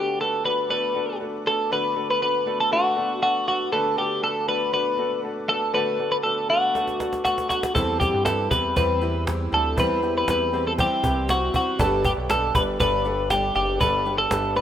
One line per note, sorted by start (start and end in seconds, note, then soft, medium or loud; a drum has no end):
0.00 0.41 D3 medium
0.00 0.14 A3 medium
0.00 0.14 B3 medium
0.00 0.14 D4 medium
0.00 0.14 F#4 medium
0.00 0.21 G4 medium
0.00 0.14 B4 medium
0.00 7.72 B4 medium
0.00 7.72 F#5 medium
0.00 7.72 A5 medium
0.00 7.72 D6 medium
0.19 0.39 A3 medium
0.19 0.39 B3 medium
0.19 0.39 D4 medium
0.19 0.39 F#4 medium
0.19 0.45 A4 loud
0.19 0.40 B4 medium
0.44 0.64 A3 medium
0.44 0.64 B3 medium
0.44 0.64 D4 medium
0.44 0.64 F#4 medium
0.44 0.64 B4 medium
0.44 0.69 B4 loud
0.69 0.89 A3 loud
0.69 0.89 B3 medium
0.69 0.90 D4 medium
0.69 0.90 F#4 medium
0.69 0.90 A4 loud
0.69 1.17 B4 loud
0.95 1.14 A3 medium
0.95 1.15 B3 medium
0.95 1.15 D4 medium
0.95 1.15 F#4 medium
0.95 1.15 A4 medium
1.20 1.40 A3 medium
1.20 1.40 B3 medium
1.20 1.40 D4 medium
1.20 1.40 F#4 medium
1.20 1.40 A4 medium
1.45 1.65 A3 medium
1.45 1.65 B3 medium
1.45 1.65 D4 medium
1.45 1.65 F#4 medium
1.45 1.66 A4 medium
1.45 1.72 A4 loud
1.71 2.43 D3 medium
1.71 1.90 A3 loud
1.71 1.90 B3 loud
1.71 1.90 D4 medium
1.71 1.91 F#4 medium
1.71 1.91 B4 loud
1.71 2.07 B4 loud
1.95 2.15 A3 medium
1.95 2.15 B3 medium
1.95 2.15 D4 medium
1.95 2.15 F#4 medium
1.95 2.16 A4 medium
2.11 2.21 B4 loud
2.21 2.40 A3 medium
2.21 2.40 B3 medium
2.21 2.41 D4 medium
2.21 2.41 F#4 medium
2.21 2.41 B4 medium
2.21 2.60 B4 loud
2.46 2.66 A3 medium
2.46 2.66 B3 medium
2.46 2.66 D4 medium
2.46 2.66 F#4 medium
2.46 2.66 A4 loud
2.60 2.72 A4 loud
2.71 2.91 A3 loud
2.71 2.91 B3 medium
2.71 2.91 D4 medium
2.71 2.91 F#4 medium
2.71 3.21 F#4 loud
2.71 2.91 A4 loud
2.96 3.16 A3 medium
2.96 3.16 B3 medium
2.96 3.16 D4 medium
2.96 3.17 F#4 medium
2.96 3.17 A4 medium
3.21 3.41 A3 medium
3.21 3.41 B3 medium
3.21 3.41 D4 medium
3.21 3.42 F#4 medium
3.21 3.47 F#4 loud
3.21 3.42 A4 medium
3.47 3.67 A3 medium
3.47 3.67 B3 medium
3.47 3.67 D4 medium
3.47 3.72 F#4 medium
3.47 3.67 F#4 medium
3.47 3.67 A4 medium
3.72 4.44 D3 medium
3.72 3.92 A3 loud
3.72 3.92 B3 loud
3.72 3.92 D4 loud
3.72 3.92 F#4 medium
3.72 3.96 A4 loud
3.72 3.92 B4 loud
3.97 4.17 A3 medium
3.97 4.17 B3 medium
3.97 4.17 D4 medium
3.97 4.17 F#4 medium
3.97 4.21 G4 medium
3.97 4.17 A4 medium
4.22 4.42 A3 medium
4.22 4.42 B3 medium
4.22 4.42 D4 medium
4.22 4.42 F#4 medium
4.22 4.47 A4 loud
4.22 4.42 B4 medium
4.48 4.67 A3 medium
4.48 4.67 B3 medium
4.48 4.68 D4 medium
4.48 4.68 F#4 medium
4.48 4.68 A4 loud
4.48 4.72 B4 loud
4.72 4.92 A3 loud
4.72 4.92 B3 medium
4.72 4.93 D4 loud
4.72 4.93 F#4 medium
4.72 4.93 B4 loud
4.72 5.20 B4 loud
4.98 5.18 A3 medium
4.98 5.18 B3 medium
4.98 5.18 D4 medium
4.98 5.18 F#4 medium
4.98 5.18 A4 medium
5.23 5.43 A3 medium
5.23 5.43 B3 medium
5.23 5.43 D4 medium
5.23 5.43 F#4 medium
5.23 5.44 A4 medium
5.48 5.68 A3 medium
5.48 5.68 B3 medium
5.48 5.68 D4 medium
5.48 5.69 F#4 medium
5.48 5.73 A4 loud
5.48 5.69 A4 medium
5.74 6.46 D3 medium
5.74 5.93 A3 loud
5.74 5.94 B3 loud
5.74 5.94 D4 loud
5.74 5.94 F#4 loud
5.74 5.94 A4 loud
5.74 6.11 B4 loud
5.99 6.19 A3 medium
5.99 6.19 B3 medium
5.99 6.19 D4 medium
5.99 6.19 F#4 medium
5.99 6.19 A4 medium
6.12 6.17 B4 loud
6.23 6.44 A3 medium
6.23 6.44 B3 medium
6.23 6.44 D4 medium
6.23 6.44 F#4 medium
6.23 6.47 A4 loud
6.23 6.44 B4 medium
6.49 6.69 A3 medium
6.49 6.69 B3 medium
6.49 6.69 D4 medium
6.49 7.23 F#4 loud
6.49 6.70 F#4 medium
6.49 6.70 A4 loud
6.74 6.94 A3 loud
6.74 6.94 B3 medium
6.74 6.94 D4 medium
6.74 6.94 F#4 medium
6.74 6.95 A4 loud
6.74 cajon slap medium
6.88 cajon slap medium
6.99 7.19 A3 medium
6.99 7.19 B3 medium
6.99 7.19 D4 medium
6.99 7.19 F#4 medium
6.99 7.20 A4 medium
6.99 cajon slap medium
7.13 cajon slap medium
7.24 7.44 A3 medium
7.24 7.44 B3 medium
7.24 7.45 D4 medium
7.24 7.48 F#4 loud
7.24 7.45 F#4 medium
7.24 7.45 A4 medium
7.24 cajon slap medium
7.38 cajon slap medium
7.49 7.70 A3 medium
7.49 7.70 B3 medium
7.49 7.70 D4 medium
7.49 7.73 F#4 medium
7.49 7.70 F#4 medium
7.49 7.70 B4 medium
7.49 cajon slap loud
7.63 cajon slap loud
7.74 8.11 E2 loud
7.74 8.47 E3 medium
7.74 8.01 E3 medium
7.74 7.95 G3 loud
7.74 7.95 C4 medium
7.74 11.75 C4 medium
7.74 8.01 C4 loud
7.74 7.95 E4 medium
7.74 8.00 E4 medium
7.74 7.95 G4 medium
7.74 7.99 G4 loud
7.74 7.99 A4 medium
7.74 7.95 C5 loud
7.74 11.75 E5 medium
7.74 14.61 G5 medium
7.74 11.75 E6 medium
7.74 cajon bass loud
8.00 8.20 G3 medium
8.00 8.20 C4 medium
8.00 8.25 C4 medium
8.00 8.20 E4 medium
8.00 8.26 E4 medium
8.00 8.24 G4 medium
8.00 8.20 G4 medium
8.00 8.20 C5 medium
8.00 cajon bass loud
8.14 8.49 G2 loud
8.25 8.51 E3 medium
8.25 8.45 G3 medium
8.25 8.45 C4 medium
8.25 8.51 C4 medium
8.25 8.45 E4 medium
8.25 8.51 E4 medium
8.25 8.46 G4 medium
8.25 8.50 G4 medium
8.25 8.50 A4 loud
8.25 8.46 B4 medium
8.25 cajon slap loud
8.51 8.75 E2 loud
8.51 8.71 G3 medium
8.51 8.71 C4 medium
8.51 8.75 C4 soft
8.51 8.71 E4 medium
8.51 8.76 E4 medium
8.51 8.76 G4 medium
8.51 8.71 G4 medium
8.51 8.76 B4 loud
8.51 8.71 B4 medium
8.51 cajon bass loud
8.76 9.48 E2 loud
8.76 9.02 E3 medium
8.76 8.96 G3 loud
8.76 8.96 C4 medium
8.76 9.02 C4 medium
8.76 8.96 E4 medium
8.76 9.01 E4 loud
8.76 8.96 G4 medium
8.76 9.00 G4 loud
8.76 9.24 B4 loud
8.76 8.96 C5 loud
8.76 cajon bass loud
9.01 9.21 G3 medium
9.01 9.21 C4 medium
9.01 9.26 C4 medium
9.01 9.21 E4 medium
9.01 9.27 E4 medium
9.01 9.27 G4 medium
9.01 9.22 G4 medium
9.01 9.22 C5 medium
9.26 9.52 E3 medium
9.26 9.46 G3 medium
9.26 9.46 C4 medium
9.26 9.53 C4 medium
9.26 9.46 E4 medium
9.26 9.52 E4 medium
9.26 9.46 G4 medium
9.26 9.51 G4 medium
9.26 9.46 C5 medium
9.26 cajon slap loud
9.52 9.76 D2 loud
9.52 9.71 G3 medium
9.52 9.71 C4 medium
9.52 9.77 C4 medium
9.52 9.71 E4 medium
9.52 9.78 E4 medium
9.52 9.77 G4 medium
9.52 9.72 G4 medium
9.52 9.79 A4 medium
9.52 9.72 D5 medium
9.77 10.24 E2 loud
9.77 10.49 E3 medium
9.77 10.03 E3 medium
9.77 9.96 G3 loud
9.77 9.97 C4 medium
9.77 10.03 C4 medium
9.77 9.97 E4 loud
9.77 10.03 E4 loud
9.77 9.97 G4 loud
9.77 10.02 G4 loud
9.77 10.14 B4 medium
9.77 9.97 C5 loud
9.77 cajon bass loud
10.02 10.22 G3 medium
10.02 10.22 C4 medium
10.02 10.27 C4 medium
10.02 10.22 E4 medium
10.02 10.28 E4 medium
10.02 10.28 G4 medium
10.02 10.22 G4 medium
10.02 10.22 C5 medium
10.18 10.29 B4 medium
10.28 10.88 E2 loud
10.28 10.53 E3 medium
10.28 10.47 G3 medium
10.28 10.47 C4 medium
10.28 10.53 C4 medium
10.28 10.47 E4 medium
10.28 10.53 E4 medium
10.28 10.47 G4 medium
10.28 10.52 G4 medium
10.28 10.48 B4 medium
10.28 10.67 B4 medium
10.28 cajon slap loud
10.53 10.72 G3 medium
10.53 10.72 C4 medium
10.53 10.78 C4 medium
10.53 10.73 E4 medium
10.53 10.78 E4 medium
10.53 10.78 G4 medium
10.53 10.73 G4 medium
10.53 10.73 C5 loud
10.67 10.72 A4 medium
10.78 11.04 E3 medium
10.78 10.97 G3 medium
10.78 10.98 C4 medium
10.78 11.04 C4 medium
10.78 10.98 E4 medium
10.78 11.03 E4 loud
10.78 10.98 G4 medium
10.78 11.02 G4 loud
10.78 11.30 G4 loud
10.78 10.98 C5 loud
10.78 cajon bass loud
11.03 11.51 C2 medium
11.03 11.23 G3 medium
11.03 11.23 C4 medium
11.03 11.28 C4 medium
11.03 11.23 E4 medium
11.03 11.28 E4 medium
11.03 11.29 G4 medium
11.03 11.23 G4 medium
11.03 11.23 B4 medium
11.03 cajon bass loud
11.28 11.54 E3 medium
11.28 11.48 G3 medium
11.28 11.48 C4 medium
11.28 11.54 C4 medium
11.28 11.48 E4 medium
11.28 11.54 E4 medium
11.28 11.55 F#4 medium
11.28 11.49 G4 medium
11.28 11.52 G4 medium
11.28 11.49 C5 medium
11.28 cajon slap loud
11.53 11.73 G3 medium
11.53 11.73 C4 medium
11.53 11.79 C4 medium
11.53 11.73 E4 medium
11.53 11.80 E4 medium
11.53 11.78 F#4 medium
11.53 11.79 G4 medium
11.53 11.73 G4 medium
11.53 11.74 C5 medium
11.53 cajon bass medium
11.79 12.14 G1 loud
11.79 12.04 G2 medium
11.79 12.51 G2 medium
11.79 12.04 D3 medium
11.79 11.98 G3 loud
11.79 12.04 G3 loud
11.79 11.99 B3 loud
11.79 12.05 B3 loud
11.79 11.99 D4 medium
11.79 12.04 D4 loud
11.79 11.99 G4 loud
11.79 12.03 G4 loud
11.79 12.05 A4 medium
11.79 14.61 B4 medium
11.79 11.99 B4 loud
11.79 14.61 D5 medium
11.79 14.61 D6 medium
11.79 cajon bass loud
12.04 12.23 G3 medium
12.04 12.28 G3 medium
12.04 12.24 B3 medium
12.04 12.29 B3 medium
12.04 12.24 D4 medium
12.04 12.30 D4 medium
12.04 12.30 G4 medium
12.04 12.24 G4 medium
12.04 12.12 G4 medium
12.04 12.24 B4 medium
12.04 cajon bass loud
12.17 12.52 B1 medium
12.29 12.49 G3 medium
12.29 12.55 G3 medium
12.29 12.49 B3 medium
12.29 12.55 B3 medium
12.29 12.49 D4 medium
12.29 12.54 D4 medium
12.29 12.49 G4 medium
12.29 12.53 G4 medium
12.29 12.54 A4 loud
12.29 12.49 B4 medium
12.29 cajon slap loud
12.55 12.78 G1 loud
12.55 12.74 G3 medium
12.55 12.79 G3 medium
12.55 12.74 B3 medium
12.55 12.79 B3 medium
12.55 12.79 D4 medium
12.55 12.74 D4 medium
12.55 12.80 G4 medium
12.55 12.75 G4 medium
12.55 12.62 B4 loud
12.55 12.75 B4 loud
12.55 cajon bass loud
12.79 13.52 G1 loud
12.79 13.05 G2 medium
12.79 13.05 D3 medium
12.79 12.99 G3 loud
12.79 13.05 G3 loud
12.79 12.99 B3 medium
12.79 13.05 B3 medium
12.79 12.99 D4 medium
12.79 13.04 D4 medium
12.79 12.99 G4 medium
12.79 13.04 G4 loud
12.79 13.00 A4 loud
12.79 13.30 B4 loud
12.79 cajon bass loud
13.05 13.24 G3 medium
13.05 13.29 G3 medium
13.05 13.25 B3 medium
13.05 13.29 B3 medium
13.05 13.25 D4 medium
13.05 13.30 D4 medium
13.05 13.30 G4 medium
13.05 13.25 G4 medium
13.05 13.25 A4 medium
13.30 13.49 G3 medium
13.30 13.55 G3 medium
13.30 13.50 B3 medium
13.30 13.55 B3 medium
13.30 13.50 D4 medium
13.30 13.55 D4 medium
13.30 13.50 G4 medium
13.30 13.54 G4 loud
13.30 13.54 G4 medium
13.30 13.50 D5 medium
13.30 cajon slap loud
13.55 13.79 F#1 loud
13.55 13.75 G3 medium
13.55 13.80 G3 medium
13.55 13.75 B3 medium
13.55 13.80 B3 medium
13.55 13.75 D4 medium
13.55 13.80 D4 medium
13.55 13.81 G4 medium
13.55 13.79 G4 medium
13.55 13.75 G4 medium
13.55 13.75 D5 medium
13.80 14.28 G1 loud
13.80 14.06 G2 medium
13.80 14.52 G2 medium
13.80 14.06 D3 loud
13.80 14.00 G3 loud
13.80 14.06 G3 medium
13.80 14.00 B3 loud
13.80 14.06 B3 loud
13.80 14.00 D4 loud
13.80 14.05 D4 medium
13.80 14.00 G4 medium
13.80 14.04 G4 loud
13.80 14.00 A4 loud
13.80 14.16 B4 loud
13.80 cajon bass loud
14.05 14.25 G3 medium
14.05 14.29 G3 soft
14.05 14.25 B3 medium
14.05 14.30 B3 medium
14.05 14.25 D4 medium
14.05 14.31 D4 medium
14.05 14.31 G4 medium
14.05 14.26 G4 medium
14.05 14.26 B4 medium
14.18 14.56 A4 loud
14.31 14.61 G1 loud
14.31 14.50 G3 medium
14.31 14.56 G3 medium
14.31 14.50 B3 medium
14.31 14.56 B3 medium
14.31 14.51 D4 medium
14.31 14.55 D4 medium
14.31 14.51 G4 medium
14.31 14.54 G4 medium
14.31 14.51 B4 medium
14.31 cajon slap loud
14.56 14.61 G3 medium
14.56 14.61 G3 soft
14.56 14.61 B3 medium
14.56 14.61 D4 medium
14.56 14.61 G4 medium
14.56 14.61 B4 loud